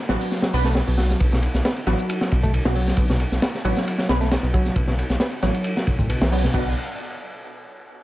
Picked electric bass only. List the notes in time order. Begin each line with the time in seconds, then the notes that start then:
0.09 F#3
0.43 F#3
0.65 A3
0.87 B2
0.98 F#3
1.20 B2
1.32 B2
1.65 B3
1.87 F#3
2.21 F#3
2.43 A3
2.65 B2
2.76 F#3
2.98 B2
3.10 B2
3.42 B3
3.65 F#3
3.99 F#3
4.21 A3
4.43 B2
4.54 F#3
4.76 B2
4.88 B2
5.20 B3
5.43 F#3
5.76 F#3
5.99 A2
6.09 B2
6.21 E3
6.32 F#3
6.43 B2
6.54 B2